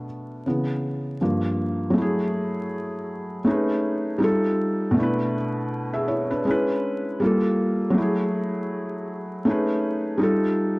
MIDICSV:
0, 0, Header, 1, 2, 480
1, 0, Start_track
1, 0, Key_signature, 3, "minor"
1, 0, Tempo, 750000
1, 1251, Time_signature, 4, 2, 24, 8
1, 6906, End_track
2, 0, Start_track
2, 0, Title_t, "Felt piano"
2, 0, Program_c, 0, 0
2, 0, Control_c, 0, 64, 127
2, 0, Note_on_c, 0, 47, 53
2, 0, Note_on_c, 0, 57, 50
2, 0, Note_on_c, 0, 59, 66
2, 0, Note_on_c, 0, 62, 58
2, 0, Note_on_c, 0, 71, 83
2, 293, Note_off_c, 0, 59, 0
2, 295, Note_on_c, 0, 49, 54
2, 298, Control_c, 0, 64, 0
2, 300, Note_off_c, 0, 57, 0
2, 300, Note_on_c, 0, 52, 49
2, 301, Note_off_c, 0, 62, 0
2, 303, Note_on_c, 0, 59, 56
2, 304, Note_off_c, 0, 47, 0
2, 395, Control_c, 0, 64, 127
2, 747, Note_off_c, 0, 71, 0
2, 749, Note_off_c, 0, 49, 0
2, 752, Note_off_c, 0, 52, 0
2, 753, Note_off_c, 0, 59, 0
2, 775, Note_on_c, 0, 43, 53
2, 779, Note_on_c, 0, 53, 48
2, 780, Control_c, 0, 64, 0
2, 784, Note_on_c, 0, 58, 56
2, 890, Control_c, 0, 64, 127
2, 1217, Note_on_c, 0, 54, 74
2, 1229, Note_off_c, 0, 43, 0
2, 1232, Note_off_c, 0, 53, 0
2, 1234, Note_off_c, 0, 58, 0
2, 1240, Note_on_c, 0, 57, 69
2, 1260, Control_c, 0, 64, 0
2, 1266, Note_on_c, 0, 64, 73
2, 1291, Note_on_c, 0, 68, 88
2, 1388, Control_c, 0, 64, 127
2, 2175, Note_off_c, 0, 54, 0
2, 2186, Note_off_c, 0, 57, 0
2, 2200, Note_off_c, 0, 64, 0
2, 2205, Note_on_c, 0, 57, 74
2, 2212, Note_off_c, 0, 68, 0
2, 2215, Note_on_c, 0, 61, 76
2, 2218, Control_c, 0, 64, 0
2, 2224, Note_on_c, 0, 63, 73
2, 2233, Note_on_c, 0, 68, 69
2, 2243, Note_on_c, 0, 71, 79
2, 2345, Control_c, 0, 64, 127
2, 2676, Note_on_c, 0, 55, 78
2, 2679, Note_off_c, 0, 63, 0
2, 2688, Note_off_c, 0, 57, 0
2, 2688, Note_on_c, 0, 63, 68
2, 2693, Note_off_c, 0, 61, 0
2, 2700, Note_on_c, 0, 65, 70
2, 2701, Control_c, 0, 64, 0
2, 2702, Note_off_c, 0, 68, 0
2, 2707, Note_off_c, 0, 71, 0
2, 2713, Note_on_c, 0, 69, 91
2, 2829, Control_c, 0, 64, 127
2, 3143, Note_on_c, 0, 47, 81
2, 3162, Note_on_c, 0, 57, 69
2, 3164, Note_off_c, 0, 55, 0
2, 3170, Note_off_c, 0, 63, 0
2, 3176, Note_off_c, 0, 65, 0
2, 3180, Control_c, 0, 64, 0
2, 3181, Note_on_c, 0, 62, 67
2, 3182, Note_off_c, 0, 69, 0
2, 3199, Note_on_c, 0, 64, 76
2, 3218, Note_on_c, 0, 71, 87
2, 3307, Control_c, 0, 64, 127
2, 3412, Note_off_c, 0, 62, 0
2, 3421, Note_off_c, 0, 64, 0
2, 3431, Note_off_c, 0, 71, 0
2, 3798, Note_on_c, 0, 76, 65
2, 3802, Note_on_c, 0, 68, 59
2, 3889, Note_on_c, 0, 73, 62
2, 3891, Note_off_c, 0, 76, 0
2, 3893, Note_off_c, 0, 68, 0
2, 3893, Note_on_c, 0, 64, 55
2, 4021, Note_off_c, 0, 73, 0
2, 4023, Note_off_c, 0, 64, 0
2, 4036, Note_on_c, 0, 71, 71
2, 4040, Note_on_c, 0, 62, 51
2, 4098, Note_off_c, 0, 47, 0
2, 4108, Note_off_c, 0, 57, 0
2, 4128, Note_on_c, 0, 56, 75
2, 4139, Control_c, 0, 64, 0
2, 4141, Note_on_c, 0, 61, 73
2, 4154, Note_on_c, 0, 64, 70
2, 4155, Note_off_c, 0, 71, 0
2, 4165, Note_on_c, 0, 71, 90
2, 4255, Control_c, 0, 64, 127
2, 4263, Note_off_c, 0, 62, 0
2, 4607, Note_on_c, 0, 55, 74
2, 4610, Note_off_c, 0, 56, 0
2, 4616, Note_off_c, 0, 61, 0
2, 4619, Note_on_c, 0, 58, 72
2, 4620, Control_c, 0, 64, 0
2, 4623, Note_off_c, 0, 64, 0
2, 4628, Note_off_c, 0, 71, 0
2, 4630, Note_on_c, 0, 65, 73
2, 4643, Note_on_c, 0, 69, 83
2, 4721, Control_c, 0, 64, 127
2, 5057, Note_on_c, 0, 54, 80
2, 5081, Note_on_c, 0, 57, 72
2, 5089, Note_off_c, 0, 55, 0
2, 5095, Note_off_c, 0, 58, 0
2, 5100, Control_c, 0, 64, 0
2, 5101, Note_off_c, 0, 65, 0
2, 5106, Note_on_c, 0, 64, 80
2, 5107, Note_off_c, 0, 69, 0
2, 5131, Note_on_c, 0, 68, 77
2, 5203, Control_c, 0, 64, 127
2, 6015, Note_off_c, 0, 54, 0
2, 6027, Note_off_c, 0, 57, 0
2, 6040, Note_off_c, 0, 64, 0
2, 6047, Note_on_c, 0, 57, 83
2, 6053, Note_off_c, 0, 68, 0
2, 6058, Note_on_c, 0, 61, 73
2, 6060, Control_c, 0, 64, 0
2, 6065, Note_on_c, 0, 63, 68
2, 6076, Note_on_c, 0, 68, 73
2, 6084, Note_on_c, 0, 71, 84
2, 6175, Control_c, 0, 64, 127
2, 6513, Note_on_c, 0, 55, 75
2, 6514, Note_off_c, 0, 63, 0
2, 6524, Note_on_c, 0, 63, 77
2, 6529, Note_off_c, 0, 57, 0
2, 6535, Note_off_c, 0, 61, 0
2, 6537, Note_on_c, 0, 65, 72
2, 6539, Control_c, 0, 64, 0
2, 6544, Note_off_c, 0, 68, 0
2, 6548, Note_off_c, 0, 71, 0
2, 6549, Note_on_c, 0, 69, 86
2, 6668, Control_c, 0, 64, 127
2, 6906, Note_off_c, 0, 55, 0
2, 6906, Note_off_c, 0, 63, 0
2, 6906, Note_off_c, 0, 65, 0
2, 6906, Note_off_c, 0, 69, 0
2, 6906, End_track
0, 0, End_of_file